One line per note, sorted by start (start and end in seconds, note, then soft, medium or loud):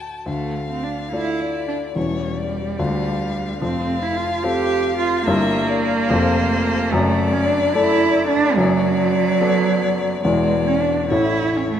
0.00 0.22 D2 medium
0.00 0.22 A3 soft
0.00 0.23 F#4 soft
0.00 0.23 D5 soft
0.00 0.28 A5 medium
0.26 1.92 D2 medium
0.26 1.92 D3 medium
0.26 0.67 A3 medium
0.26 1.42 F5 medium
0.70 0.85 C4 medium
0.84 1.12 D4 medium
1.13 1.92 A3 soft
1.13 1.67 E4 loud
1.13 1.92 F4 soft
1.13 1.92 D5 medium
1.41 1.96 D5 medium
1.68 1.76 D4 medium
1.95 2.76 E1 medium
1.95 2.76 E2 medium
1.95 3.58 G3 loud
1.95 2.75 C#4 soft
1.95 2.75 E4 soft
1.95 2.75 C#5 soft
1.95 2.39 C#5 medium
2.38 2.80 D5 medium
2.79 3.59 D2 medium
2.79 3.59 D3 medium
2.79 3.58 D4 medium
2.79 3.58 F4 soft
2.79 3.58 A4 soft
2.79 3.62 F5 medium
3.61 5.24 F1 medium
3.61 5.24 F2 medium
3.61 4.04 C4 loud
3.61 5.27 F5 medium
4.03 4.18 E4 loud
4.17 4.45 F4 medium
4.43 5.24 C4 medium
4.43 5.24 F4 medium
4.43 4.98 G4 loud
4.43 5.24 A4 medium
4.99 5.26 F4 loud
5.26 6.08 G1 medium
5.26 6.08 G2 medium
5.26 6.06 G3 medium
5.26 6.92 A#3 loud
5.26 6.06 E4 medium
5.26 6.07 A#4 medium
5.26 5.70 E5 medium
5.68 6.10 D5 medium
6.09 6.90 F1 medium
6.09 6.90 F2 medium
6.09 6.88 A3 medium
6.09 6.89 F4 medium
6.09 6.93 C5 medium
6.09 6.89 C5 medium
6.91 8.54 F#1 medium
6.91 8.54 F#2 medium
6.91 7.34 A3 loud
6.91 8.57 D5 loud
7.33 7.48 C#4 loud
7.47 7.75 D4 loud
7.73 8.53 A3 medium
7.73 8.28 E4 loud
7.73 8.54 A4 medium
7.73 8.54 D5 medium
8.29 8.58 D4 loud
8.56 10.21 F#1 medium
8.56 10.21 F#2 medium
8.56 10.22 F#3 loud
8.56 10.21 D5 loud
9.41 10.21 B3 medium
9.41 10.21 A4 medium
9.41 10.21 D5 medium
10.22 11.08 E1 medium
10.22 11.09 E2 medium
10.22 10.69 G#3 loud
10.22 11.07 B3 medium
10.22 11.08 E4 medium
10.22 11.12 D5 medium
10.22 11.08 D5 medium
10.68 10.83 C#4 loud
10.81 11.10 D4 medium
11.10 11.80 A1 medium
11.10 11.80 A2 medium
11.10 11.80 A3 medium
11.10 11.58 E4 loud
11.10 11.80 E4 medium
11.10 11.80 C#5 medium
11.57 11.70 C#4 medium
11.71 11.80 A3 medium